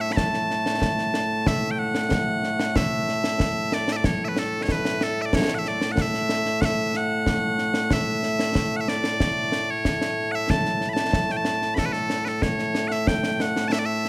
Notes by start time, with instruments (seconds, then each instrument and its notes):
Already playing: bagpipes A2 A3
0.01 bagpipes E5
0.12 bagpipes B5
0.17 bagpipes A5, concert bass drum, snare
0.34 snare
0.51 snare
0.66 snare
0.82 concert bass drum, snare
0.98 snare
1.14 snare
1.46 bagpipes E5, concert bass drum, snare
1.71 bagpipes G5
1.79 bagpipes F#5
1.95 snare
2.11 concert bass drum, snare
2.44 snare
2.60 snare
2.76 bagpipes E5, concert bass drum, snare
3.08 snare
3.24 snare
3.40 concert bass drum, snare
3.72 bagpipes D5, snare
3.88 snare
3.93 bagpipes D5 E5
4.04 bagpipes C#5, concert bass drum, snare
4.25 bagpipes B4 E5
4.37 bagpipes A4, snare
4.63 bagpipes C#5
4.69 bagpipes B4, concert bass drum, snare
4.85 snare
5.01 bagpipes A4, snare
5.22 bagpipes D5 E5
5.33 bagpipes C#5, concert bass drum, snare
5.50 snare
5.55 bagpipes E5 F#5
5.65 bagpipes D5, snare
5.82 snare
5.92 bagpipes F#5
5.97 bagpipes E5, concert bass drum, snare
6.14 snare
6.29 snare
6.46 snare
6.61 bagpipes F#5, concert bass drum, snare
6.65 bagpipes E5
6.94 bagpipes F#5, snare
7.26 concert bass drum, snare
7.58 snare
7.74 snare
7.91 bagpipes E5, concert bass drum, snare
8.23 snare
8.39 snare
8.55 concert bass drum, snare
8.76 bagpipes F#5
8.80 bagpipes E5
8.88 bagpipes D5, snare
9.04 snare
9.20 concert bass drum, snare
9.52 snare
9.70 bagpipes C#5
9.85 concert bass drum, snare
10.02 snare
10.32 bagpipes E5 F#5
10.50 bagpipes A5, concert bass drum, snare
10.65 snare
10.81 snare
10.89 bagpipes B5
10.93 bagpipes A5, snare
11.13 concert bass drum, snare
11.30 bagpipes G5, snare
11.37 bagpipes A5
11.45 snare
11.62 snare
11.74 bagpipes B5, concert bass drum, snare
11.79 bagpipes A4
11.86 bagpipes B4
11.93 bagpipes A4, snare
12.10 snare
12.25 bagpipes A4 B4, snare
12.42 bagpipes C#5, concert bass drum, snare
12.59 snare
12.75 snare
12.88 bagpipes E5 F#5, snare
13.07 bagpipes G5, concert bass drum, snare
13.24 snare
13.40 bagpipes F#5, snare
13.56 snare
13.68 bagpipes A5
13.72 bagpipes E5, snare
13.79 bagpipes D5
13.86 bagpipes E5
14.05 snare